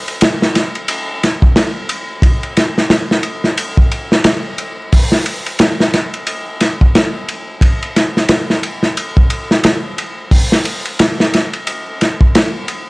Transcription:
0.08 ride soft
0.21 snare loud
0.21 ride medium
0.42 snare medium
0.55 snare soft
0.55 ride medium
0.75 ride soft
0.88 ride medium
1.23 snare soft
1.23 ride medium
1.42 kick loud
1.56 snare loud
1.56 ride medium
1.89 ride medium
2.22 kick loud
2.22 ride medium
2.43 ride soft
2.57 snare medium
2.57 ride medium
2.78 snare soft
2.90 snare loud
2.90 ride medium
3.11 snare medium
3.23 ride medium
3.44 snare soft
3.57 ride medium
3.77 kick medium
3.92 ride medium
4.12 snare medium
4.24 snare loud
4.24 ride medium
4.58 ride medium
4.92 kick loud
4.92 open hi-hat medium
5.12 snare medium
5.26 ride medium
5.46 ride soft
5.59 snare loud
5.59 ride medium
5.80 snare medium
5.94 snare soft
5.94 ride medium
6.14 ride soft
6.27 ride medium
6.60 snare soft
6.60 ride medium
6.81 kick medium
6.95 snare loud
6.95 ride medium
7.29 ride medium
7.61 kick loud
7.61 ride medium
7.83 ride soft
7.96 snare soft
7.96 ride medium
8.17 snare soft
8.29 snare loud
8.29 ride medium
8.50 snare soft
8.63 ride medium
8.83 snare soft
8.97 ride medium
9.17 kick loud
9.30 ride medium
9.51 snare soft
9.64 snare loud
9.64 ride medium
9.98 ride medium
10.31 kick loud
10.31 open hi-hat medium
10.52 snare medium
10.65 ride medium
10.85 ride soft
10.99 snare loud
10.99 ride medium
11.20 snare medium
11.34 snare soft
11.34 ride medium
11.53 ride soft
11.67 ride medium
12.01 snare soft
12.01 ride medium
12.21 kick medium
12.35 snare loud
12.35 ride medium
12.68 ride medium

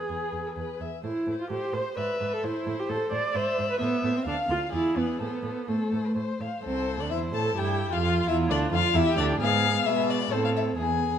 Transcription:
0.00 0.81 G#4 soft
0.00 0.79 B4 soft
0.09 0.18 E2 soft
0.09 0.42 G#4 soft
0.33 0.41 E2 soft
0.46 0.51 A4 soft
0.57 0.65 E2 soft
0.57 0.82 B4 soft
0.81 0.89 E2 soft
0.81 1.04 E5 soft
1.04 1.12 A2 soft
1.04 1.36 E4 soft
1.04 1.27 C5 soft
1.27 1.35 A2 soft
1.27 1.51 C5 soft
1.40 1.49 F4 soft
1.50 1.58 A2 soft
1.50 1.75 G4 medium
1.50 1.74 C5 soft
1.50 1.98 C5 soft
1.73 1.81 A2 soft
1.73 1.97 C5 medium
1.73 1.97 C5 soft
1.97 2.06 G#2 soft
1.97 2.34 B4 medium
1.97 2.21 D5 soft
1.97 2.46 E5 soft
2.21 2.29 G#2 soft
2.21 2.43 D5 soft
2.33 2.45 A4 medium
2.43 2.52 A2 soft
2.43 2.81 E4 medium
2.43 2.66 C5 soft
2.43 3.34 C5 soft
2.67 2.75 A2 soft
2.67 2.89 C5 soft
2.79 2.91 G4 medium
2.89 2.98 A2 soft
2.89 3.11 A4 medium
2.89 3.11 C5 soft
3.12 3.20 A2 soft
3.12 3.33 C5 soft
3.12 3.37 D5 medium
3.34 3.43 G#2 medium
3.34 3.69 C5 medium
3.34 3.56 D5 soft
3.34 3.79 E5 medium
3.57 3.67 G#2 soft
3.57 3.79 D5 soft
3.70 3.80 B4 medium
3.79 3.89 A2 medium
3.79 4.18 B3 medium
3.79 4.03 C5 soft
3.79 4.25 E5 medium
4.03 4.11 A2 medium
4.03 4.25 C5 soft
4.16 4.26 C4 soft
4.25 4.34 D2 soft
4.25 4.35 D4 medium
4.25 4.48 F5 soft
4.25 4.71 F5 medium
4.49 4.57 D2 soft
4.49 4.58 F4 medium
4.49 4.71 F5 soft
4.72 4.80 E2 soft
4.72 4.98 E4 medium
4.72 5.21 G#4 medium
4.72 4.95 D5 soft
4.96 5.04 E2 soft
4.96 5.20 B3 medium
4.96 5.20 D5 soft
5.20 5.28 A2 soft
5.20 5.70 B3 medium
5.20 5.63 A4 soft
5.20 5.44 C5 soft
5.43 5.51 A2 soft
5.43 5.68 C5 soft
5.68 5.76 A2 soft
5.68 6.17 A3 soft
5.68 6.06 A4 soft
5.68 5.92 C5 soft
5.92 6.01 A2 soft
5.92 6.16 C5 soft
6.05 6.15 B4 soft
6.16 6.24 A2 soft
6.16 6.42 C5 soft
6.16 6.40 C5 soft
6.40 6.49 A2 soft
6.40 6.64 C5 soft
6.40 6.64 F5 soft
6.63 6.99 C2 medium
6.63 6.97 C4 medium
6.63 7.08 A4 soft
6.63 7.01 C5 medium
6.98 7.12 D2 medium
6.98 7.12 D4 medium
6.98 7.10 D5 medium
7.10 7.33 E2 medium
7.10 7.34 E4 medium
7.10 7.56 C5 medium
7.10 7.19 E5 medium
7.34 7.57 A2 medium
7.34 7.57 A4 medium
7.34 7.59 A5 medium
7.57 7.91 G2 medium
7.57 8.02 E4 medium
7.57 7.91 G4 medium
7.57 7.94 G5 medium
7.92 8.26 F2 medium
7.92 8.29 F4 medium
7.92 8.27 F5 medium
8.03 8.93 F4 medium
8.27 8.51 E2 medium
8.27 8.51 E4 medium
8.27 8.36 E5 medium
8.49 8.71 D2 medium
8.49 8.72 D4 medium
8.49 8.58 D5 medium
8.71 8.79 F2 medium
8.71 8.96 F4 medium
8.71 8.97 F5 medium
8.94 9.03 E2 medium
8.94 9.20 E4 medium
8.94 9.39 G4 medium
8.94 9.17 E5 loud
9.17 9.40 D2 medium
9.17 9.41 D4 medium
9.17 9.25 D5 medium
9.40 9.83 G#2 medium
9.40 9.89 B3 medium
9.40 9.85 G#4 medium
9.40 9.87 F5 loud
9.85 10.31 B2 medium
9.85 10.34 G#3 medium
9.85 10.33 B4 medium
9.85 10.11 E5 medium
10.10 10.34 D5 medium
10.32 10.77 A2 medium
10.32 10.79 C4 medium
10.32 10.79 A4 medium
10.32 10.44 C5 medium
10.45 10.49 F5 medium
10.56 10.64 E5 medium
10.78 11.19 E2 soft
10.78 11.19 B3 soft
10.78 11.19 G#4 medium
10.78 11.19 G#5 medium

